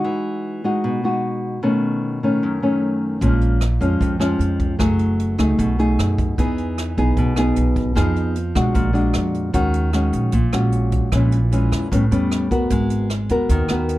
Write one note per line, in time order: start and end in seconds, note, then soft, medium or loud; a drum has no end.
0.00 0.61 G#3 medium
0.00 0.62 D#4 medium
0.00 0.62 F#4 medium
0.04 0.82 E3 soft
0.64 1.01 G#3 medium
0.64 1.01 D#4 medium
0.64 1.01 F#4 medium
0.84 1.61 B2 medium
1.04 1.60 G#3 medium
1.04 1.61 D#4 medium
1.04 1.61 F#4 medium
1.63 2.40 B2 soft
1.63 2.19 D#3 soft
1.63 2.19 A3 soft
1.63 2.20 C#4 medium
2.23 2.59 D#3 medium
2.23 2.60 A3 medium
2.23 2.60 C#4 medium
2.43 3.20 F#2 medium
2.62 3.19 D#3 medium
2.62 3.19 A3 medium
2.62 3.19 C#4 medium
3.21 3.77 A#1 medium
3.21 3.99 A#2 soft
3.21 3.61 F3 medium
3.21 3.61 G#3 soft
3.21 3.62 C#4 medium
3.21 kick medium
3.21 closed hi-hat soft
3.41 closed hi-hat soft
3.61 cross-stick medium
3.61 closed hi-hat soft
3.81 3.99 F2 medium
3.81 4.17 F3 medium
3.81 4.17 G#3 medium
3.81 4.18 C#4 medium
3.81 closed hi-hat soft
4.01 4.78 F2 soft
4.01 4.37 F2 medium
4.01 kick medium
4.01 closed hi-hat soft
4.20 4.76 F3 medium
4.20 4.76 G#3 medium
4.20 4.76 C#4 medium
4.20 cross-stick medium
4.20 closed hi-hat soft
4.39 4.76 F2 medium
4.39 closed hi-hat soft
4.60 kick medium
4.60 closed hi-hat soft
4.79 5.35 F#1 medium
4.79 5.56 F#3 medium
4.79 5.35 A3 medium
4.79 5.36 E4 soft
4.79 5.36 G#4 medium
4.79 kick medium
4.79 cross-stick medium
4.79 closed hi-hat soft
4.99 closed hi-hat soft
5.20 closed hi-hat soft
5.38 5.57 C#2 medium
5.38 5.75 A3 medium
5.38 5.75 D#4 medium
5.38 5.76 G#4 medium
5.38 cross-stick medium
5.38 closed hi-hat soft
5.58 5.96 B1 medium
5.58 6.36 B2 medium
5.58 kick medium
5.58 closed hi-hat soft
5.79 6.35 A3 medium
5.79 6.35 D#4 medium
5.79 6.35 G#4 medium
5.79 closed hi-hat soft
5.99 6.35 F#2 medium
5.99 cross-stick medium
5.99 closed hi-hat soft
6.18 kick medium
6.18 closed hi-hat soft
6.38 6.93 E2 medium
6.38 7.15 E3 soft
6.38 6.94 B3 medium
6.38 6.94 D#4 soft
6.38 6.95 G#4 medium
6.38 kick medium
6.38 closed hi-hat soft
6.58 closed hi-hat soft
6.78 cross-stick medium
6.78 closed hi-hat soft
6.97 7.16 B1 medium
6.97 7.34 B3 medium
6.97 7.34 D#4 medium
6.97 7.34 G#4 medium
6.97 closed hi-hat soft
7.17 7.54 B1 medium
7.17 7.95 B2 medium
7.17 kick medium
7.17 closed hi-hat soft
7.36 7.93 B3 medium
7.36 7.93 D#4 medium
7.36 7.94 G#4 medium
7.36 cross-stick medium
7.36 closed hi-hat soft
7.56 7.93 B1 medium
7.56 closed hi-hat soft
7.76 kick medium
7.76 closed hi-hat soft
7.95 8.51 F2 medium
7.95 8.73 F3 soft
7.95 8.35 B3 soft
7.95 8.35 D#4 medium
7.95 8.36 G#4 medium
7.95 kick medium
7.95 cross-stick medium
7.95 closed hi-hat soft
8.16 closed hi-hat soft
8.35 closed hi-hat soft
8.55 8.74 B2 medium
8.55 8.92 G#3 medium
8.55 8.92 D4 medium
8.55 8.92 F#4 medium
8.55 kick soft
8.55 cross-stick medium
8.55 closed hi-hat soft
8.74 9.12 A#1 medium
8.74 9.52 A#2 medium
8.74 kick medium
8.74 closed hi-hat soft
8.93 9.50 G#3 medium
8.93 9.50 D4 medium
8.93 9.51 F#4 medium
8.93 closed hi-hat soft
9.14 9.52 F2 medium
9.14 cross-stick medium
9.14 closed hi-hat soft
9.34 closed hi-hat soft
9.53 10.10 D#2 medium
9.53 10.31 D#3 soft
9.53 9.90 G#3 soft
9.53 9.90 C#4 medium
9.53 9.90 F#4 medium
9.53 kick medium
9.53 closed hi-hat medium
9.74 closed hi-hat soft
9.93 10.33 G#3 medium
9.93 10.33 C#4 medium
9.93 10.33 F#4 medium
9.93 cross-stick medium
9.93 closed hi-hat soft
10.13 10.31 A#1 medium
10.13 closed hi-hat soft
10.32 10.51 A#1 medium
10.32 11.10 A#2 soft
10.32 kick medium
10.32 closed hi-hat soft
10.52 11.08 A#1 medium
10.52 11.09 G#3 medium
10.52 11.09 C#4 medium
10.52 11.09 F#4 medium
10.52 cross-stick medium
10.52 closed hi-hat soft
10.72 closed hi-hat soft
10.92 kick medium
10.92 closed hi-hat soft
11.12 11.68 A#1 medium
11.12 11.90 A#2 soft
11.12 11.38 E3 medium
11.12 11.38 G#3 medium
11.12 11.38 C#4 medium
11.12 kick medium
11.12 cross-stick medium
11.12 closed hi-hat soft
11.32 closed hi-hat soft
11.52 11.90 E3 medium
11.52 11.90 G#3 medium
11.52 11.90 C#4 medium
11.52 closed hi-hat soft
11.72 11.90 E2 medium
11.72 cross-stick medium
11.72 closed hi-hat soft
11.92 12.10 A1 medium
11.92 12.69 A2 soft
11.92 12.03 G3 soft
11.92 12.04 B3 medium
11.92 12.04 C#4 medium
11.92 kick medium
11.92 closed hi-hat medium
12.11 12.67 E2 medium
12.11 12.48 G3 medium
12.11 12.48 B3 medium
12.11 12.48 C#4 medium
12.11 closed hi-hat soft
12.31 cross-stick medium
12.31 closed hi-hat soft
12.51 13.07 B3 medium
12.51 13.07 F#4 medium
12.51 13.08 A#4 medium
12.51 kick medium
12.51 closed hi-hat soft
12.70 13.26 G#1 medium
12.70 13.48 G#3 medium
12.70 kick medium
12.70 closed hi-hat medium
12.90 closed hi-hat soft
13.10 cross-stick medium
13.10 closed hi-hat soft
13.29 13.48 D#2 medium
13.29 13.67 B3 medium
13.29 13.67 F#4 medium
13.29 13.67 A#4 medium
13.29 closed hi-hat soft
13.49 13.68 D#2 medium
13.49 13.98 D#3 medium
13.49 kick medium
13.49 closed hi-hat soft
13.69 13.98 D#2 medium
13.69 13.98 B3 medium
13.69 13.98 F#4 medium
13.69 13.98 A#4 medium
13.69 cross-stick medium
13.69 closed hi-hat soft
13.89 closed hi-hat soft